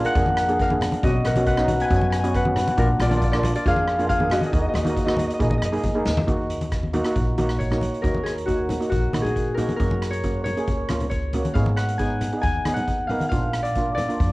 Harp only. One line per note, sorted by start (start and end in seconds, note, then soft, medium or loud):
0.00 0.11 F4 medium
0.00 1.80 G#4 medium
0.00 1.09 D5 medium
0.00 0.11 F5 loud
0.05 0.60 A#4 medium
0.05 0.67 F#5 loud
0.61 0.67 A#4 medium
0.61 0.67 F5 medium
1.03 3.07 F#4 medium
1.03 2.84 D#5 medium
1.26 1.53 A#4 medium
1.26 1.46 F#5 medium
1.47 1.81 B4 medium
1.47 2.36 F#5 medium
1.81 2.35 B4 medium
1.81 1.88 G#5 loud
1.88 1.96 G#5 medium
1.96 2.02 G#5 medium
2.03 2.10 G#5 medium
2.10 2.19 G#5 medium
2.19 3.69 G#5 medium
2.35 2.85 B4 medium
2.35 3.07 F#5 medium
2.78 2.84 D4 medium
2.78 2.85 A#4 medium
3.01 3.55 F4 medium
3.01 3.09 D5 medium
3.09 3.17 D5 medium
3.17 3.23 D5 medium
3.24 3.31 D5 medium
3.32 3.39 D5 medium
3.39 3.55 D5 medium
3.55 3.62 F4 medium
3.55 3.61 D5 medium
3.67 4.09 G#4 medium
3.67 4.09 F5 loud
4.09 6.37 G#4 medium
4.09 4.37 F5 loud
4.31 6.75 F#4 medium
4.31 4.38 D#5 medium
4.46 4.52 D#5 medium
4.53 4.61 D#5 medium
4.62 4.68 D#5 medium
4.69 4.76 D#5 medium
4.76 4.83 D#5 medium
4.83 4.89 D#5 medium
4.90 4.98 D#5 medium
4.98 5.05 D#5 medium
5.05 5.12 D#5 medium
5.12 5.19 D#5 medium
5.19 5.27 D#5 medium
5.28 5.33 D#5 medium
5.34 5.42 D#5 medium
5.42 5.50 D#5 medium
5.50 5.58 D#5 medium
5.58 5.65 D#5 medium
5.65 7.44 D#5 medium
7.59 9.50 C#5 medium
8.02 9.54 A#4 medium
8.24 8.30 G#4 medium
8.46 8.89 F#4 medium
8.90 11.33 F#4 medium
9.22 11.49 G#4 medium
9.54 9.76 A#4 medium
9.76 11.88 A#4 medium
10.11 10.44 C#5 medium
10.44 11.09 C#5 medium
11.10 13.01 C#5 medium
11.54 11.60 F5 medium
11.76 12.73 F#5 medium
11.98 12.41 G#5 medium
12.41 13.91 G#5 loud
12.74 13.13 F#5 medium
13.07 13.28 F5 medium
13.29 14.32 F5 medium
13.63 13.94 D5 medium
13.95 14.32 D5 medium